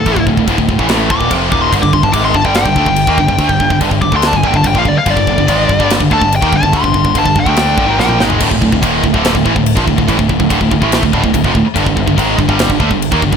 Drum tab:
CC |x---x---x---x---|x---x---x---x---|x---x---x---x---|x---x---x---x---|
SD |--------o-------|--------o-------|--------o-------|--------o-------|
T2 |----------------|----------------|----------------|----------------|
FT |----------------|----------------|----------------|----------------|
BD |oooooooo--ooo-o-|ooooo-oo-ooo-ooo|oooooooo-oooooo-|ooooo-oo-ooo-ooo|

CC |x---x---x-------|x---x---x---x---|x---x---x---x---|x---x---x---x---|
SD |--------o---o-o-|--------o-------|--------o-------|--------o-------|
T2 |-------------o--|----------------|----------------|----------------|
FT |---------------o|----------------|----------------|----------------|
BD |oooooooo--o-----|ooooo-oo-ooo-ooo|oooooooo-oooooo-|ooooo-oo-ooo-ooo|